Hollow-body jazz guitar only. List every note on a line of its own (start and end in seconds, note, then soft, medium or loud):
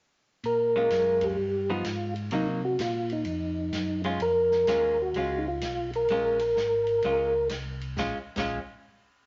0.76 1.35 G#3 medium
0.76 1.35 C#4 medium
0.76 1.36 F4 medium
1.70 1.84 F3 medium
1.70 1.84 B3 medium
1.70 1.84 D#4 medium
2.32 2.60 F#3 medium
2.32 2.60 A#3 medium
2.32 2.61 D#4 medium
4.05 4.19 G#3 medium
4.05 4.19 C#4 medium
4.05 4.20 F4 medium
4.68 4.96 G#3 medium
4.68 4.96 C#4 medium
4.68 4.96 F4 medium
5.16 5.44 G#3 medium
5.16 5.44 C#4 medium
5.16 5.44 F4 medium
6.11 6.38 G#3 medium
6.11 6.38 C#4 medium
6.11 6.39 F4 medium
7.05 7.32 G#3 soft
7.05 7.32 C#4 medium
7.05 7.33 F4 medium
7.99 8.17 G#3 medium
7.99 8.17 C#4 medium
7.99 8.17 F4 medium
8.38 8.58 G#3 medium
8.38 8.58 C#4 medium
8.38 8.59 F4 medium